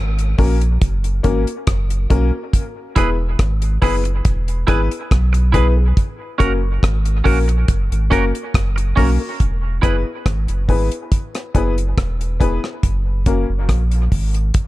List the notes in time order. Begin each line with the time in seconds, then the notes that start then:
Already playing: G#1
0.19 closed hi-hat
0.38 A#1 A#3 C#4 F#4 A#4, kick, open hi-hat
0.61 closed hi-hat
0.81 F#1, kick, closed hi-hat
1.04 closed hi-hat
1.23 G#1 A#3 C#4 F#4 A#4, kick, closed hi-hat
1.47 closed hi-hat
1.67 F#1, kick, cross-stick, closed hi-hat
1.90 closed hi-hat
2.10 B1 A#3 C#4 F#4 A#4, kick, closed hi-hat
2.33 F#4 A#4
2.53 kick, closed hi-hat
2.96 E1 B3 E4 G#4 B4, kick, closed hi-hat
3.39 G#1, kick, cross-stick, closed hi-hat
3.62 closed hi-hat
3.82 F#1 B3 E4 G#4 B4, kick, open hi-hat
4.04 muted clean electric guitar stroke, closed hi-hat
4.25 E1, kick, closed hi-hat
4.48 closed hi-hat
4.67 G#1 B3 E4 G#4 B4, kick, closed hi-hat
4.91 closed hi-hat
5.11 B1, kick, cross-stick, closed hi-hat
5.33 muted clean electric guitar stroke, closed hi-hat
5.52 B3 E4 G#4 B4, kick, closed hi-hat
5.76 G#4 B4
5.97 kick, closed hi-hat
6.38 F#1 A#3 C#4 F#4 A#4, kick, closed hi-hat
6.83 G#1, kick, cross-stick, closed hi-hat
7.05 closed hi-hat
7.24 A#1 A#3 C#4 F#4 A#4, kick, open hi-hat
7.48 muted clean electric guitar stroke, closed hi-hat
7.68 F#1, kick, closed hi-hat
7.91 G#1, closed hi-hat
8.10 F#1 A#3 C#4 F#4 A#4, kick, closed hi-hat
8.35 closed hi-hat
8.54 F#1, kick, cross-stick, closed hi-hat
8.76 muted clean electric guitar stroke, closed hi-hat
8.96 B1 A#3 C#4 F#4 A#4, kick, open hi-hat
9.20 F#4 A#4
9.40 E1, kick, closed hi-hat
9.82 F#1 B3 E4 G#4 B4, kick, closed hi-hat
10.26 G#1, kick, cross-stick, closed hi-hat
10.48 F#1, closed hi-hat
10.68 G#1 B3 E4 G#4 B4, kick, open hi-hat
10.92 closed hi-hat
11.12 kick, closed hi-hat
11.35 cross-stick, closed hi-hat
11.54 F#1 B3 E4 G#4 B4, kick, closed hi-hat
11.78 closed hi-hat
11.97 E1, kick, cross-stick, closed hi-hat
12.21 closed hi-hat
12.40 B3 E4 G#4 B4, kick, closed hi-hat
12.64 cross-stick
12.83 F#1, kick, closed hi-hat
13.26 A#3 C#4 F#4 A#4, kick, closed hi-hat
13.49 F#1
13.69 A#1, kick, cross-stick, closed hi-hat
13.91 closed hi-hat
14.12 G#1, kick, open hi-hat
14.34 closed hi-hat
14.54 kick, closed hi-hat